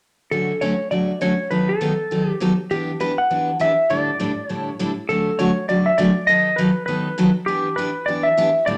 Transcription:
0.31 0.51 D3 soft
0.31 0.51 F#3 medium
0.31 0.52 A3 soft
0.31 0.52 C#4 medium
0.31 0.52 F#4 medium
0.31 0.62 A4 medium
0.61 0.72 D3 medium
0.61 0.72 F#3 medium
0.61 0.73 A3 medium
0.61 0.73 C#4 medium
0.61 0.73 F#4 medium
0.61 0.91 C#5 medium
0.91 1.11 D3 soft
0.91 1.11 F#3 soft
0.91 1.11 A3 medium
0.91 1.11 C#4 soft
0.91 1.11 F#4 medium
0.91 1.21 D5 medium
1.21 1.32 D3 medium
1.21 1.32 F#3 medium
1.21 1.32 A3 medium
1.21 1.32 C#4 medium
1.21 1.33 F#4 medium
1.21 1.52 C#5 medium
1.51 1.71 D#3 medium
1.51 1.71 F#3 medium
1.51 1.71 B3 medium
1.51 1.71 D#4 medium
1.51 1.71 A4 medium
1.51 1.69 B4 medium
1.69 2.30 A4 medium
1.81 1.92 D#3 medium
1.81 1.92 F#3 medium
1.81 1.92 B3 medium
1.81 1.92 D#4 medium
1.81 1.92 A4 medium
2.11 2.31 D#3 medium
2.11 2.31 F#3 medium
2.11 2.31 B3 soft
2.11 2.31 D#4 medium
2.11 2.31 A4 medium
2.30 2.55 G4 medium
2.40 2.51 D#3 medium
2.40 2.52 F#3 medium
2.40 2.52 B3 medium
2.40 2.52 D#4 medium
2.40 2.52 A4 medium
2.70 2.90 E3 medium
2.70 2.90 B3 medium
2.70 2.90 D4 medium
2.70 2.99 G4 medium
2.70 2.91 G4 medium
3.00 3.11 E3 medium
3.00 3.11 B3 medium
3.00 3.12 D4 medium
3.00 3.12 G4 medium
3.00 3.19 B4 medium
3.18 3.57 F#5 loud
3.31 3.50 E3 soft
3.31 3.50 B3 soft
3.31 3.50 D4 medium
3.31 3.50 G4 medium
3.59 3.71 E3 medium
3.59 3.71 B3 medium
3.59 3.71 D4 medium
3.59 3.71 G4 medium
3.59 3.91 E5 medium
3.90 4.09 A2 medium
3.90 4.10 D3 medium
3.90 4.10 G3 medium
3.90 4.10 D4 medium
3.90 4.10 E4 medium
3.90 4.10 A4 medium
3.90 4.48 D5 medium
4.19 4.30 A2 medium
4.19 4.31 D3 medium
4.19 4.31 G3 medium
4.19 4.31 D4 medium
4.19 4.31 E4 medium
4.19 4.31 A4 medium
4.48 4.69 A2 medium
4.48 4.69 D3 medium
4.48 4.69 G3 soft
4.48 4.69 D4 soft
4.48 4.70 E4 soft
4.48 4.70 A4 medium
4.48 4.76 C#5 medium
4.79 4.90 A2 medium
4.79 4.90 D3 medium
4.79 4.90 G3 medium
4.79 4.91 D4 medium
4.79 4.91 E4 medium
4.79 4.91 A4 medium
5.09 5.29 D3 medium
5.09 5.29 F#3 medium
5.09 5.29 A3 medium
5.09 5.29 C#4 medium
5.09 5.30 F#4 medium
5.09 5.40 A4 medium
5.39 5.50 D3 medium
5.39 5.50 F#3 medium
5.39 5.50 A3 medium
5.39 5.50 C#4 medium
5.39 5.50 F#4 medium
5.39 5.68 C#5 medium
5.69 5.88 D3 soft
5.69 5.89 F#3 medium
5.69 5.89 A3 medium
5.69 5.89 C#4 medium
5.69 5.89 F#4 medium
5.69 5.87 D5 medium
5.86 5.99 E5 medium
5.98 6.09 D3 medium
5.98 6.09 F#3 medium
5.98 6.10 A3 medium
5.98 6.10 C#4 medium
5.98 6.10 F#4 medium
5.98 6.27 D5 medium
6.27 6.48 D#3 medium
6.27 6.48 F#3 medium
6.27 6.48 B3 medium
6.27 6.48 D#4 medium
6.27 6.49 A4 medium
6.27 6.59 D#5 medium
6.56 6.69 D#3 medium
6.56 6.69 F#3 medium
6.56 6.69 B3 medium
6.56 6.70 D#4 medium
6.56 6.70 A4 medium
6.56 6.85 B4 medium
6.86 7.08 D#3 medium
6.86 7.08 F#3 medium
6.86 7.08 B3 medium
6.86 7.08 D#4 medium
6.86 7.08 A4 medium
6.86 7.31 B4 medium
7.18 7.29 D#3 medium
7.18 7.29 F#3 medium
7.18 7.29 B3 medium
7.18 7.29 D#4 medium
7.18 7.29 A4 medium
7.46 7.67 E3 medium
7.46 7.68 B3 medium
7.46 7.68 D4 medium
7.46 7.78 G4 medium
7.46 7.68 G4 medium
7.76 7.89 E3 medium
7.76 7.89 B3 medium
7.76 7.89 D4 medium
7.76 7.89 G4 medium
7.76 8.08 B4 medium
8.06 8.27 E3 medium
8.06 8.27 B3 medium
8.06 8.28 D4 medium
8.06 8.28 G4 medium
8.06 8.25 D5 loud
8.23 8.68 E5 medium
8.37 8.48 E3 medium
8.37 8.48 B3 medium
8.37 8.49 D4 medium
8.37 8.49 G4 medium
8.66 8.78 A2 medium
8.66 8.78 D3 medium
8.66 8.78 G3 medium
8.66 8.78 D4 medium
8.66 8.78 E4 medium
8.66 8.78 A4 medium
8.66 8.78 D5 loud

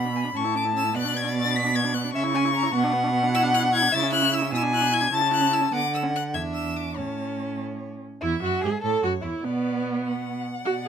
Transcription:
0.00 0.34 B2 medium
0.00 0.38 B5 loud
0.05 0.13 D4 medium
0.13 0.26 B3 medium
0.13 0.24 G#5 medium
0.24 0.33 D4 medium
0.34 0.97 A2 medium
0.34 0.46 C#4 medium
0.34 0.97 A5 medium
0.34 0.56 C#6 loud
0.45 0.57 E4 medium
0.55 0.66 C#4 medium
0.55 0.64 D6 medium
0.65 0.74 E4 medium
0.75 0.86 C#4 medium
0.75 0.96 E6 loud
0.84 0.94 E4 medium
0.94 2.15 B2 medium
0.94 1.06 B3 medium
0.94 2.15 D5 loud
0.94 1.18 F#6 loud
1.04 1.16 D4 medium
1.14 1.25 B3 medium
1.14 1.36 G#6 loud
1.24 1.34 D4 medium
1.35 1.46 B3 medium
1.35 1.57 A6 loud
1.45 1.57 D4 medium
1.55 1.66 B3 medium
1.55 1.77 B6 loud
1.64 1.74 D4 medium
1.75 1.86 B3 medium
1.75 1.95 G#6 loud
1.85 1.95 D4 medium
1.94 2.06 B3 medium
1.94 2.12 F#6 loud
2.04 2.13 D4 medium
2.13 2.74 C#3 loud
2.13 2.25 C#4 medium
2.13 2.23 E5 loud
2.13 3.11 C#6 loud
2.24 2.36 E4 medium
2.34 2.46 C#4 medium
2.34 2.43 G#5 loud
2.45 2.53 E4 medium
2.54 2.65 C#4 medium
2.54 2.73 A#5 loud
2.63 2.73 E4 medium
2.73 3.91 B2 loud
2.73 2.85 B3 medium
2.73 3.94 F#5 loud
2.84 2.95 D4 medium
2.93 3.05 B3 medium
3.04 3.13 D4 medium
3.13 3.25 B3 medium
3.23 3.32 D4 medium
3.33 3.45 E4 medium
3.33 3.42 E6 loud
3.44 3.55 D4 medium
3.54 3.65 E4 medium
3.54 3.62 F#6 loud
3.63 3.72 D4 medium
3.73 3.84 E4 medium
3.73 3.96 G#6 loud
3.82 3.92 D4 medium
3.93 4.54 C#3 loud
3.93 4.05 E4 medium
3.93 4.52 E5 loud
3.93 4.12 A6 loud
4.03 4.14 C#4 medium
4.12 4.24 E4 medium
4.12 4.35 F#6 loud
4.23 4.32 C#4 medium
4.32 4.43 E4 medium
4.32 4.53 E6 loud
4.42 4.51 C#4 medium
4.52 5.11 B2 medium
4.52 4.64 E4 medium
4.52 5.11 G#5 loud
4.52 4.62 E6 loud
4.63 4.75 D4 medium
4.73 4.83 E4 medium
4.73 4.95 F#6 loud
4.82 4.91 D4 medium
4.92 5.03 E4 medium
4.92 5.15 G#6 loud
5.02 5.11 D4 medium
5.12 5.71 C#3 medium
5.12 5.23 E4 medium
5.12 5.74 A5 loud
5.12 5.33 A6 loud
5.21 5.33 C#4 medium
5.31 5.43 E4 medium
5.31 5.55 F#6 loud
5.41 5.50 C#4 medium
5.51 5.63 E4 medium
5.51 5.73 E6 loud
5.61 5.71 C#4 medium
5.72 6.35 D3 medium
5.72 5.80 B3 medium
5.72 6.36 F#5 medium
5.72 5.93 D6 loud
5.94 6.02 E6 medium
6.03 6.11 C#4 medium
6.16 6.23 F#6 loud
6.34 6.98 E2 medium
6.34 6.99 D4 medium
6.34 6.95 E5 medium
6.34 6.42 G#6 loud
6.54 6.78 E6 medium
6.76 6.98 D6 medium
6.96 8.02 A2 medium
6.96 8.03 C#4 medium
6.96 7.89 C#5 medium
6.96 7.60 A5 medium
8.21 8.41 E2 medium
8.21 8.29 E4 medium
8.21 8.41 E4 medium
8.21 8.80 E5 medium
8.41 8.62 F#2 medium
8.41 8.63 F#4 medium
8.61 8.71 G#2 medium
8.61 8.81 G#4 medium
8.61 8.72 G#4 medium
8.82 9.02 A2 medium
8.82 9.02 A4 medium
8.82 9.03 A4 medium
8.82 9.43 C#5 medium
9.02 9.22 F#2 medium
9.02 9.11 F#4 medium
9.02 9.13 F#4 medium
9.22 9.31 E2 medium
9.22 9.30 E4 medium
9.22 9.46 E4 medium
9.41 10.42 B2 medium
9.41 10.41 B3 medium
9.41 10.45 B3 medium
9.41 10.03 D5 medium
10.05 10.88 F#5 medium
10.64 10.88 B2 medium
10.64 10.73 F#4 medium
10.64 10.88 D5 medium

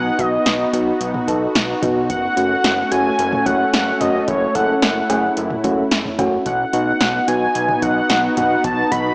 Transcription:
0.00 0.11 B1 loud
0.00 2.06 B3 medium
0.00 2.06 D#4 medium
0.00 4.24 F#4 medium
0.00 0.21 F#5 loud
0.19 0.38 B1 loud
0.19 0.37 B3 medium
0.19 0.37 D#4 medium
0.19 0.37 F#4 medium
0.19 0.73 D#5 medium
0.19 kick medium
0.19 closed hi-hat medium
0.46 0.65 B1 loud
0.46 snare loud
0.46 closed hi-hat medium
0.73 0.92 B1 loud
0.73 0.91 B3 medium
0.73 0.91 D#4 medium
0.73 0.91 F#4 medium
0.73 closed hi-hat medium
1.01 1.20 B1 loud
1.01 closed hi-hat medium
1.14 mid tom medium
1.28 1.47 B1 loud
1.28 1.46 B3 medium
1.28 1.46 D#4 medium
1.28 1.46 A4 medium
1.28 kick loud
1.28 closed hi-hat medium
1.55 1.74 B1 loud
1.55 snare loud
1.55 closed hi-hat medium
1.82 2.11 B1 loud
1.82 2.00 B3 medium
1.82 2.00 D#4 medium
1.82 2.00 F#4 loud
1.82 kick loud
1.82 closed hi-hat medium
1.82 mid tom medium
2.10 2.29 F#1 loud
2.10 6.42 A3 medium
2.10 6.42 C#4 medium
2.10 2.93 F#5 loud
2.10 kick loud
2.10 closed hi-hat medium
2.37 2.56 F#1 loud
2.37 2.55 A3 medium
2.37 2.55 C#4 medium
2.37 2.55 F#4 medium
2.37 closed hi-hat medium
2.64 2.83 F#1 loud
2.64 snare loud
2.64 closed hi-hat medium
2.91 3.11 F#1 loud
2.91 3.10 A3 medium
2.91 3.10 C#4 medium
2.91 3.10 F#4 medium
2.91 3.48 G#5 loud
2.91 closed hi-hat medium
3.19 3.38 F#1 loud
3.19 closed hi-hat medium
3.32 mid tom medium
3.46 3.65 F#1 loud
3.46 3.64 A3 medium
3.46 3.64 C#4 medium
3.46 3.64 F#4 medium
3.46 3.73 F#5 loud
3.46 kick loud
3.46 closed hi-hat medium
3.73 3.92 F#1 loud
3.73 4.02 F#5 loud
3.73 snare loud
3.73 closed hi-hat medium
4.00 4.20 F#1 loud
4.00 4.19 A3 medium
4.00 4.19 C#4 medium
4.00 4.19 F#4 medium
4.00 4.27 D#5 medium
4.00 closed hi-hat medium
4.00 mid tom medium
4.28 4.47 F#1 loud
4.28 6.44 E4 medium
4.28 4.57 C#5 loud
4.28 kick loud
4.28 closed hi-hat medium
4.55 4.74 F#1 loud
4.55 4.73 A3 medium
4.55 4.73 C#4 medium
4.55 4.73 A4 medium
4.55 4.82 F#5 loud
4.55 kick medium
4.55 closed hi-hat medium
4.82 5.02 F#1 loud
4.82 5.33 F#5 medium
4.82 snare loud
4.82 closed hi-hat medium
5.10 5.29 F#1 loud
5.10 5.28 A3 medium
5.10 5.28 C#4 medium
5.10 5.28 G#4 medium
5.10 closed hi-hat medium
5.10 cowbell medium
5.37 5.56 F#1 loud
5.37 closed hi-hat medium
5.50 mid tom medium
5.64 5.83 F#1 medium
5.64 5.82 A3 medium
5.64 5.82 C#4 medium
5.64 5.82 F#4 loud
5.64 kick loud
5.64 closed hi-hat medium
5.91 6.11 F#1 medium
5.91 snare loud
5.91 closed hi-hat medium
6.05 mid tom medium
6.19 6.38 F#1 loud
6.19 6.37 A3 medium
6.19 6.37 C#4 medium
6.19 6.37 F#4 loud
6.19 kick loud
6.19 closed hi-hat medium
6.19 mid tom medium
6.19 cowbell medium
6.46 6.65 B1 loud
6.46 9.14 B3 medium
6.46 9.14 D#4 medium
6.46 9.14 F#4 medium
6.46 7.29 F#5 medium
6.46 kick loud
6.46 closed hi-hat medium
6.73 6.92 B1 loud
6.73 6.91 B3 medium
6.73 6.91 D#4 medium
6.73 6.91 F#4 medium
6.73 closed hi-hat medium
7.01 7.20 B1 loud
7.01 snare loud
7.01 closed hi-hat medium
7.28 7.47 B1 loud
7.28 7.46 B3 medium
7.28 7.46 D#4 medium
7.28 7.46 F#4 medium
7.28 7.84 G#5 loud
7.28 closed hi-hat medium
7.55 7.74 B1 loud
7.55 closed hi-hat medium
7.69 mid tom medium
7.82 8.01 B1 loud
7.82 8.01 B3 medium
7.82 8.01 D#4 medium
7.82 8.01 F#4 medium
7.82 8.36 F#5 loud
7.82 kick medium
7.82 closed hi-hat medium
8.10 8.29 B1 loud
8.10 snare loud
8.10 closed hi-hat medium
8.37 8.56 B1 loud
8.37 8.55 B3 medium
8.37 8.55 D#4 medium
8.37 8.55 F#4 medium
8.37 8.66 F#5 loud
8.37 closed hi-hat medium
8.37 mid tom medium
8.64 8.83 B1 loud
8.64 8.93 A5 loud
8.64 kick loud
8.64 closed hi-hat medium
8.91 9.11 B1 loud
8.91 9.10 B3 medium
8.91 9.10 D#4 medium
8.91 9.10 F#4 medium
8.91 9.14 B5 loud
8.91 kick medium
8.91 closed hi-hat medium

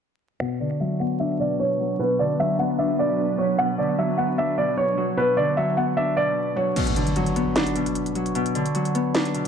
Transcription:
0.40 0.65 B2 medium
0.40 6.72 F#3 medium
0.40 6.72 B3 medium
0.40 6.72 D4 medium
0.40 6.72 B4 medium
0.40 0.56 F#5 loud
0.60 1.45 D3 medium
0.60 0.76 D5 medium
0.80 1.78 F#3 medium
0.80 0.96 E5 medium
1.00 2.59 B3 medium
1.00 1.16 F#5 medium
1.20 2.79 D4 medium
1.20 1.35 E5 medium
1.40 1.98 B2 medium
1.40 1.55 D5 medium
1.60 1.97 C#5 medium
1.80 2.24 F#3 medium
1.99 2.24 B2 medium
1.99 2.15 B4 medium
2.19 3.04 D3 medium
2.19 2.35 D5 medium
2.39 3.37 F#3 medium
2.39 2.55 E5 medium
2.59 4.18 B3 medium
2.59 2.75 F#5 medium
2.79 4.37 D4 medium
2.79 2.94 E5 medium
2.99 3.57 B2 medium
2.99 3.36 D5 medium
3.38 3.63 F#3 medium
3.38 3.54 C#5 medium
3.58 3.83 B2 medium
3.58 3.74 F#5 loud
3.78 4.63 D3 medium
3.78 3.94 D5 medium
3.98 4.96 F#3 medium
3.98 4.14 E5 medium
4.18 5.77 B3 medium
4.18 4.33 F#5 medium
4.38 5.97 D4 loud
4.38 4.54 E5 medium
4.58 5.16 B2 medium
4.58 4.73 D5 medium
4.78 5.15 C#5 medium
4.98 5.42 F#3 medium
5.17 5.42 B2 medium
5.17 5.33 B4 medium
5.37 6.22 D3 medium
5.37 5.53 D5 medium
5.57 6.55 F#3 medium
5.57 5.73 E5 medium
5.77 7.36 B3 medium
5.77 5.93 F#5 medium
5.97 7.55 D4 loud
5.97 6.12 E5 medium
6.17 6.75 B2 medium
6.17 6.54 D5 medium
6.56 6.81 F#3 medium
6.56 6.72 C#5 medium
6.76 7.01 B2 medium
6.76 closed hi-hat medium
6.76 crash medium
6.76 impact medium
6.87 closed hi-hat medium
6.96 7.81 D3 medium
6.96 closed hi-hat medium
7.07 closed hi-hat medium
7.16 8.14 F#3 medium
7.16 closed hi-hat medium
7.26 closed hi-hat soft
7.36 8.94 B3 medium
7.36 closed hi-hat medium
7.56 9.14 D4 loud
7.56 snare loud
7.56 closed hi-hat medium
7.66 closed hi-hat medium
7.76 8.34 B2 medium
7.76 closed hi-hat medium
7.86 closed hi-hat medium
7.95 closed hi-hat medium
8.06 closed hi-hat soft
8.15 8.60 F#3 medium
8.15 closed hi-hat medium
8.26 closed hi-hat medium
8.35 8.60 B2 loud
8.35 closed hi-hat medium
8.46 closed hi-hat medium
8.55 9.40 D3 medium
8.55 closed hi-hat medium
8.66 closed hi-hat medium
8.75 9.48 F#3 medium
8.75 closed hi-hat medium
8.85 closed hi-hat soft
8.95 9.48 B3 medium
8.95 closed hi-hat medium
9.15 9.48 D4 loud
9.15 snare loud
9.15 closed hi-hat medium
9.25 closed hi-hat medium
9.34 9.48 B2 medium
9.34 closed hi-hat medium

